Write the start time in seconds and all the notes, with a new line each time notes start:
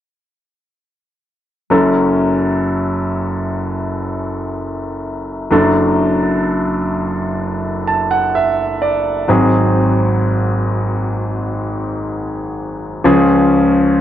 1.70 F#1 F#2 F#3 C#4 A4
5.50 F#1 F#2 F#3 D4 A4
7.87 A5
8.11 F#5
8.35 E5
8.82 D5
9.28 G#1 G#2 F#3 C4 G#4
13.04 C#2 C#3 F3 C#4 G#4